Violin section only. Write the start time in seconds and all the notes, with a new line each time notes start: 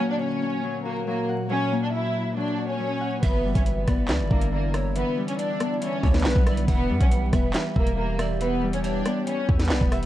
0.10 D4 D5
0.21 C#4 C#5
0.85 A#3 A#4
1.07 A#3 A#4
1.51 C#4 C#5
1.83 D4 D5
1.92 E4 E5
2.36 D4 D5
2.69 C#4 C#5
3.22 B3 B4
3.55 C#4 C#5
3.66 B3 B4
4.31 A#3 A#4
4.52 A#3 A#4
4.96 B3 B4
5.28 C#4 C#5
5.39 D4 D5
5.82 C#4 C#5
6.14 B3 B4
6.68 B3 B4
7.00 C#4 C#5
7.11 B3 B4
7.76 A#3 A#4
7.98 A#3 A#4
8.41 B3 B4
8.73 C#4 C#5
8.84 D4 D5
9.27 C#4 C#5
9.60 B3 B4